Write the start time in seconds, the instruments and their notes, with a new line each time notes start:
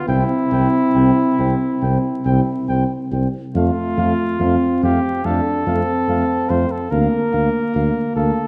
0.08 tuba C2, french horn C4, trombone C4, flugelhorn E4, trumpet G5
0.52 tuba C2, trombone C4, trumpet G5
0.95 tuba C2, trombone C4, trumpet G5
1.39 tuba C2, trombone C4, trumpet G5
1.82 tuba C2, trombone C4, trumpet G5
2.25 tuba C2, trombone C4, trumpet G5
2.69 tuba C2, trombone C4, trumpet G5
3.11 tuba C2, trombone C4, trumpet G5
3.55 tuba F2, french horn A3, trombone A3, flugelhorn F4, trumpet F5
3.97 tuba F2, trombone A3, trumpet F5
4.40 tuba F2, trombone A3, french horn C4, trumpet F5
4.83 tuba F2, trombone A3, flugelhorn G4, trumpet F5
5.25 tuba F2, trombone A3, french horn D4, flugelhorn A4, trumpet F5
5.66 tuba F2, trombone A3, french horn C4, trumpet F5
6.08 tuba F2, trombone A3, trumpet F5
6.49 tuba F2, trombone A3, flugelhorn C5, trumpet F5
6.71 flugelhorn A4
6.91 tuba D2, french horn A#3, trombone A#3, flugelhorn A#4, trumpet F5
7.33 tuba D2, trombone A#3, trumpet F5
7.74 tuba D2, trombone A#3, trumpet F5
8.16 tuba D2, trombone A#3, flugelhorn A4, trumpet F5